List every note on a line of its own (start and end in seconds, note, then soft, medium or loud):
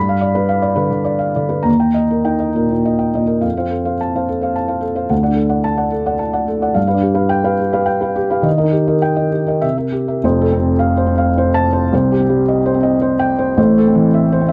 0.00 1.63 G2 medium
0.00 0.18 B5 medium
0.09 0.31 F5 soft
0.21 0.45 D5 medium
0.35 0.59 B4 medium
0.49 0.73 F5 medium
0.62 0.87 D5 medium
0.76 0.89 D3 soft
0.76 1.01 B4 soft
0.90 1.15 D3 soft
1.05 1.30 D5 soft
1.19 1.44 F5 soft
1.36 1.66 D3 soft
1.36 1.60 D5 soft
1.49 1.65 B4 soft
1.63 3.38 D#2 soft
1.63 1.88 A#5 medium
1.80 2.04 G5 soft
1.94 2.19 D#5 soft
2.10 2.34 A#4 soft
2.25 2.73 D#4 soft
2.25 2.49 G5 soft
2.40 2.64 D#5 soft
2.55 2.69 A#2 soft
2.55 2.79 A#4 soft
2.71 2.94 A#2 soft
2.85 3.09 D#5 soft
2.99 3.23 G5 soft
3.15 3.44 A#2 soft
3.15 3.38 D#5 soft
3.26 3.42 A#4 soft
3.41 5.06 F2 soft
3.41 3.56 F5 soft
3.57 3.91 C4 soft
3.57 3.70 C5 soft
3.57 3.70 F5 soft
3.70 3.94 A4 soft
3.85 3.99 C5 soft
3.85 3.99 F5 soft
4.01 4.23 A5 soft
4.16 4.28 C5 soft
4.16 4.28 F5 soft
4.28 4.51 A4 soft
4.42 4.55 C5 soft
4.42 4.55 F5 soft
4.56 4.78 A5 soft
4.68 4.81 C5 soft
4.68 4.81 F5 soft
4.81 5.04 A4 soft
4.95 5.09 C5 soft
4.95 5.09 F5 soft
5.10 6.72 D2 soft
5.10 5.22 F#5 soft
5.23 5.36 D5 soft
5.23 5.36 F#5 soft
5.28 5.58 D4 soft
5.35 5.58 A4 soft
5.49 5.63 D5 soft
5.49 5.63 F#5 soft
5.64 5.87 A5 medium
5.77 5.91 D5 soft
5.77 5.91 F#5 soft
5.91 6.15 A4 soft
6.06 6.19 D5 soft
6.06 6.19 F#5 soft
6.19 6.42 A5 soft
6.33 6.46 D5 soft
6.33 6.47 F#5 soft
6.48 6.70 A4 soft
6.62 6.75 D5 soft
6.62 6.75 F#5 soft
6.74 8.41 G2 soft
6.74 6.86 F5 soft
6.87 7.01 B4 soft
6.87 7.01 F5 soft
6.94 7.24 D4 soft
7.02 7.25 G4 soft
7.14 7.29 B4 soft
7.14 7.29 F5 soft
7.29 7.53 G5 medium
7.44 7.58 B4 soft
7.44 7.58 F5 medium
7.60 7.83 G4 soft
7.73 7.87 B4 soft
7.73 7.86 F5 medium
7.86 8.10 G5 medium
8.01 8.15 B4 soft
8.01 8.15 F5 soft
8.16 8.39 G4 medium
8.30 8.44 B4 soft
8.30 8.44 F5 soft
8.42 9.58 D#3 medium
8.42 8.56 D#5 medium
8.58 8.72 A#4 soft
8.58 8.71 D#5 soft
8.64 8.95 D#4 soft
8.72 8.96 G4 soft
8.88 9.01 A#4 soft
8.88 9.01 D#5 soft
9.02 9.26 G5 medium
9.16 9.30 A#4 soft
9.16 9.30 D#5 soft
9.32 9.57 G4 soft
9.47 9.61 A#4 soft
9.47 9.62 D#5 soft
9.61 10.21 C3 soft
9.61 9.76 E5 medium
9.78 9.92 A#4 soft
9.78 9.92 E5 soft
9.92 10.17 G4 soft
10.08 10.21 A#4 soft
10.08 10.21 E5 soft
10.24 11.88 F1 medium
10.24 11.88 F2 medium
10.24 10.54 C5 medium
10.41 10.72 A4 medium
10.52 10.74 C4 medium
10.59 10.90 C3 medium
10.79 11.10 F5 medium
10.97 11.28 C5 medium
11.07 11.30 C4 soft
11.18 11.47 F5 medium
11.38 11.67 C5 medium
11.54 11.84 A5 medium
11.73 11.91 C5 medium
11.92 13.53 C2 medium
11.92 13.54 C3 medium
11.92 12.23 C5 medium
12.12 12.41 G4 medium
12.20 12.42 C4 soft
12.29 12.59 G3 medium
12.48 12.77 D#5 medium
12.66 12.95 C5 medium
12.74 12.96 C4 medium
12.83 13.13 D#5 medium
13.01 13.31 C5 medium
13.19 13.49 G5 medium
13.39 13.56 C5 medium
13.57 14.52 A1 medium
13.57 14.52 A2 medium
13.57 13.87 C5 medium
13.78 14.06 A4 medium
13.87 14.08 C4 medium
13.95 14.23 E3 medium
14.14 14.42 E5 medium
14.32 14.52 C5 medium
14.41 14.52 C4 medium
14.48 14.52 E5 medium